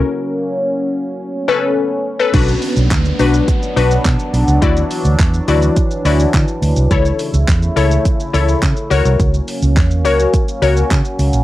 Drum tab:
CC |----------------|x---------------|----------------|----------------|
HH |----------------|x-o-x-o-x-o-x-o-|x-o-x-o-x-o-x-o-|x-o-x-o-x-o-x-o-|
SH |----------------|xxxxxxxxxxxxxxxx|xxxxxxxxxxxxxxxx|xxxxxxxxxxxxxxxx|
CP |----------------|----x-------x---|----x-------x---|----x-------x---|
BD |----------------|o---o---o---o---|o---o---o---o---|o---o---o---o---|

CC |----------------|
HH |x-o-x-o-x-o-x-o-|
SH |xxxxxxxxxxxxxxxx|
CP |----x-------x---|
BD |o---o---o---o---|